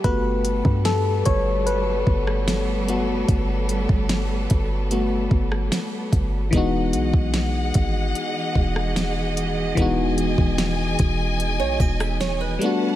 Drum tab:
HH |x-x-x-x-x---x-x-|x-x-x-x-x---x-x-|x-x-x-x-x---x-x-|x-x-x-x-x---x-x-|
SD |----o------ro---|----o------ro---|----o------ro---|----o------ro---|
BD |o--o--o---o-----|o--o--o---o---o-|o--o--o---o-----|o--o--o---o-----|